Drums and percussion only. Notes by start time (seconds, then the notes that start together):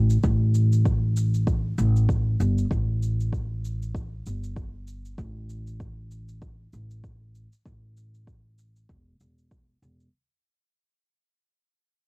0.10 cabasa
0.23 kick, cabasa
0.54 cabasa
0.72 cabasa
0.85 kick, cabasa
1.17 cabasa
1.34 cabasa
1.47 kick, cabasa
1.78 cabasa
1.96 cabasa
2.09 kick, cabasa
2.40 cabasa
2.58 cabasa
2.71 kick, cabasa
3.03 cabasa
3.20 cabasa
3.33 kick, cabasa
3.65 cabasa
3.82 cabasa
3.95 kick, cabasa
4.26 cabasa
4.43 cabasa
4.56 kick, cabasa
4.87 cabasa
5.05 cabasa
5.18 kick, cabasa
5.49 cabasa
5.67 cabasa
5.80 kick, cabasa
6.11 cabasa
6.28 cabasa
6.42 kick, cabasa
6.73 cabasa
6.91 cabasa
7.04 kick, cabasa
7.35 cabasa
7.52 cabasa
7.65 kick, cabasa
7.97 cabasa
8.14 cabasa
8.27 kick, cabasa
8.58 cabasa
8.76 cabasa
8.89 kick, cabasa
9.20 cabasa
9.38 cabasa
9.51 kick, cabasa
9.83 cabasa
10.00 cabasa